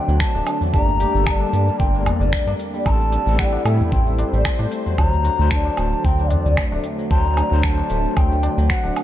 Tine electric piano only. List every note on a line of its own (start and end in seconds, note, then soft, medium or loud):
0.00 0.75 F#3 medium
0.00 0.76 D4 medium
0.00 0.75 C5 loud
0.73 1.11 G3 medium
0.73 1.12 A3 loud
0.73 1.11 A#3 medium
1.13 2.82 G3 medium
1.13 2.83 A#3 medium
1.17 2.84 A4 medium
2.85 3.23 G3 medium
2.85 3.23 C4 medium
2.85 3.24 A4 loud
3.25 4.94 G3 medium
3.25 4.95 C4 medium
3.25 4.96 A4 medium
4.98 5.36 F#3 medium
4.98 5.36 D4 medium
4.98 5.37 C5 loud
5.37 7.07 F#3 medium
5.37 7.08 D4 medium
5.42 7.09 C5 medium
7.10 7.48 F#3 medium
7.10 7.48 D4 medium
7.10 7.49 C5 loud
7.50 9.04 F#3 medium
7.50 9.04 D4 medium
7.50 9.04 C5 medium